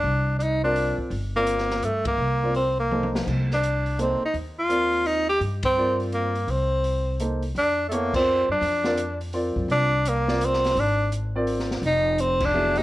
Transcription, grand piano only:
X:1
M:3/4
L:1/8
Q:"Swing" 1/4=168
K:Cdor
V:1 name="Grand piano"
z3 [CFBd]3 | z [CFBd]3 z2 | z [CFBd] z2 [B,EAc]2- | [B,EAc] z3 [B,EAc] z |
z2 [CFBd]3 z | z2 [CFBd]3 z | z4 [B,EAc] z | [K:Fdor] z2 [=B,=E=A_d] [CF_B=d]2 z |
z [CFBd] z2 [CFBd]2- | [CFBd] z2 [CFBd]3 | z3 [CFBd]3 | z4 [_G,=B,=EA] [F,_B,_E=G] |]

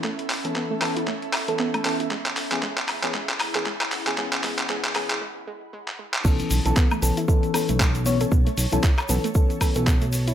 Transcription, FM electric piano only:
X:1
M:4/4
L:1/16
Q:"Swing 16ths" 1/4=116
K:F#m
V:1 name="FM electric piano"
z3 [E,B,CA]3 [E,B,CA]2 z3 [E,B,CA]3 [E,B,CA]2 | z3 [E,B,CG] z3 [E,B,CG] z3 [E,B,CG] z3 [E,B,CG] | [E,B,CG]2 [E,B,CG]2 [E,B,CG]2 [E,B,CG]2 z8 | [E,B,CA]3 [E,B,CA]3 [E,B,CA]2 [E,B,CA]2 [E,B,CA]4 [E,B,Cc] [E,B,Cc] |
z3 [E,B,CA] z2 [E,B,CA] z [E,B,CA]2 [E,B,CA] [E,B,CA]2 z3 |]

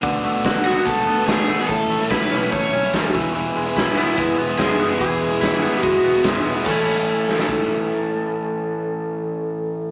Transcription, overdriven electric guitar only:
X:1
M:4/4
L:1/16
Q:1/4=145
K:A
V:1 name="Overdriven electric guitar"
[D,A,B,F]3 [A,B,F]3 [D,A,B,F]2 [D,A,B,F]3 [A,B,F]4 [A,B,F] | [E,A,CE]3 [A,CE]3 [E,A,CE]2 [E,A,CE]3 [A,CE]3 [E,G,B,E]2- | [E,G,B,E]3 [G,B,E]3 [E,G,B,E]2 [E,G,B,E]3 [G,B,E]4 [G,B,E] | [E,G,B,E]3 [G,B,E]3 [E,G,B,E]2 [E,G,B,E]3 [G,B,E]4 [G,B,E] |
[A,,E,A,CE]16- | [A,,E,A,CE]16 |]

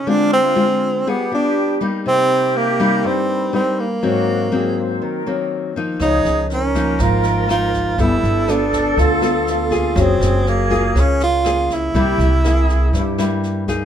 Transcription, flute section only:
X:1
M:4/4
L:1/8
Q:1/4=121
K:Cphr
V:1 name="Flute section"
F4 G4 | G6- G z | _G2 A c B3 z | A2 B6 |
=A8 | A6- A z | G2 A2 G3 z |]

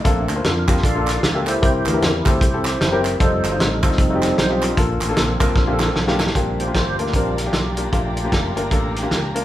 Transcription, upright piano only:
X:1
M:4/4
L:1/16
Q:"Swing" 1/4=152
K:Bb
V:1 name="Upright piano"
[B,DFAdf]2 z [B,DFc]2 z [B,DFG]2 z [B,DFA]3 z [B,DFG]2 z | [C=EGB]2 z [CEGB]2 z [CEGA]2 z [CEGA]3 z [CEGB]2 z | [CEFA]2 z [CEFc]2 z [CEFA]2 z [CEF_G=G]3 z [CEFG]2 z | [B,DFA]2 z [B,DFA]2 z [B,DFB]2 z [B,DFGA]3 z [B,DFG]2 z |
[B,DFG]2 z [B,DFG]2 z [B,DFB] z [B,DFB]2 z [B,DFG]2 z [B,DFG] z | [B,DFG]2 z [B,DFG]2 z [B,DFB] z [B,DFA]2 z [B,DFG]2 z [B,DFB] z |]
V:2 name="Upright piano" clef=bass
B,,6 z8 z2 | C,6 z8 z2 | z16 | B,,6 z8 z2 |
B,,6 z8 z2 | B,,6 z8 z2 |]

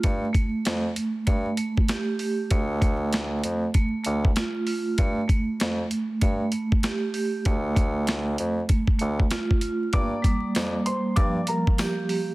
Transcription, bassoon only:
X:1
M:4/4
L:1/8
Q:"Swing 16ths" 1/4=97
K:Gm
V:1 name="Bassoon" clef=bass
G,, z F,, z G,, z3 | D,,3 F,, z D,, z2 | G,, z F,, z G,, z3 | D,,3 F,, z D,, z2 |
G,, z F,, z G,, z3 |]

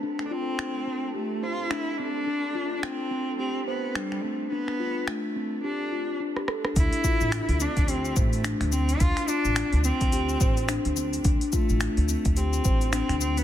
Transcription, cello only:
X:1
M:4/4
L:1/16
Q:"Swing 16ths" 1/4=107
K:Ddor
V:1 name="Cello"
z3/2 D/2 C6 A,2 F2 E3/2 E/2 D2- | D3- D/2 D/2 C4 C2 B,2 G,2 A,2 | B,4 A,4 D4 z4 | E6 D2 C2 A,4 C2 |
F2 D4 C8 z2 | z2 A,6 C4 C2 C B, |]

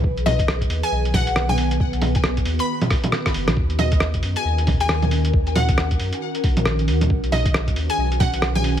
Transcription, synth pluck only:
X:1
M:4/4
L:1/16
Q:"Swing 16ths" 1/4=136
K:D#phr
V:1 name="Synth pluck"
z2 d2 z3 g3 f3 g2 z | z6 z b4 z4 z | z2 d2 z3 g4 g2 z3 | z2 f3 z8 z3 |
z2 d2 z3 g3 f3 g2 z |]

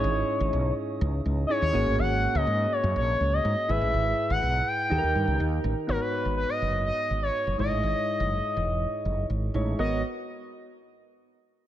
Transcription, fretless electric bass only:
X:1
M:4/4
L:1/16
Q:1/4=123
K:G#m
V:1 name="Fretless electric bass" clef=bass
G,,,2 z G,,, B,,,2 z2 C,,2 C,,2 z D,, G,,, =A,,, | G,,,3 C,, G,,2 z F,, A,,,2 C,,2 G,, z G,,, =A,,, | G,,,2 z G,,, B,,,2 z2 D,, D,, =G,, C,, D,,2 =A,,, z | G,,, z2 G,,,2 z F,,,3 z G,,,2 z F,,, G,,, =A,,, |
G,,, z2 F,,,2 z E,,,3 z F,,,2 G,,,2 =A,,,2 | G,,,2 z12 z2 |]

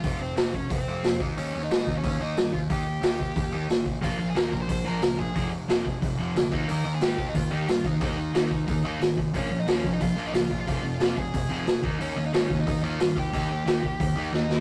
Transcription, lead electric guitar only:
X:1
M:4/4
L:1/16
Q:1/4=180
K:Ebmix
V:1 name="Lead electric guitar"
[Ff]2 [Cc]2 [Cc]2 [Dd]2 [Cc]6 z2 | [Dd]3 [Ee]4 [Dd]3 [Ee]4 [Ff]2 | [Gg]12 z4 | [Ff]3 [Aa] [Bb]3 [cc'] [cc']2 [Bb]4 [Aa]2- |
[Aa]2 z12 z2 | [Bb]3 [Aa] [Gg]3 [Ee] [Ff]2 [Gg]2 [Ff]2 [Ee]2- | [Ee]8- [Ee]2 z6 | [Dd]3 [Ee] [Dd]3 [Ee] [Ff]3 [Ee] [Ff]3 [Ff]- |
[Ff]6 [Aa]8 z2 | [Dd]3 [Ee] [Dd]3 [Ee] [Ee]2 [Ff]4 [Gg]2- | [Gg]12 [Ee]3 z |]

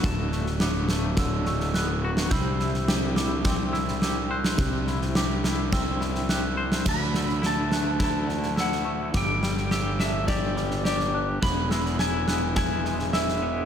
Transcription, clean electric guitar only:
X:1
M:4/4
L:1/8
Q:1/4=105
K:D
V:1 name="Clean electric guitar"
[D,,D,A,B,F] A, B, A, D, A, B, F | =C, E G E =C E G =c | =C, E G E =C E G =c | z D, E A, E D, E A, |
G,, G, G D G G, G D | E,, ^G, E B, E G, E B, |]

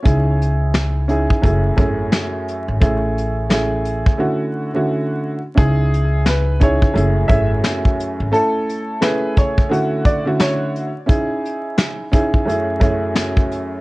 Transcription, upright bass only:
X:1
M:4/4
L:1/16
Q:"Swing 16ths" 1/4=87
K:C#m
V:1 name="Upright bass" clef=bass
C,,6- C,, z F,,,2 G,,,2 z3 G,,, | A,,,6- A,,, z8 z | C,,6- C,, z F,,,2 G,,,2 z3 G,,, | z16 |
z16 |]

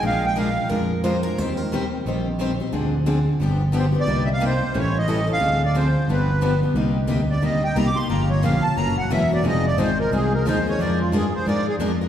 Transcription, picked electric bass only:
X:1
M:4/4
L:1/8
Q:"Swing" 1/4=179
K:Cm
V:1 name="Picked electric bass" clef=bass
B,,,4 F,,4 | E,,4 B,,,4 | D,,4 G,,,4 | C,,4 =A,,,4 |
D,,4 G,,,4 | C,,2 D,,2 E,, z C,, z | G,,,2 B,,, z ^F,,,2 =E,,,2 | F,,,2 A,,,2 C,,2 E,,2 |
F,,2 G,, z A,,2 F,,2 |]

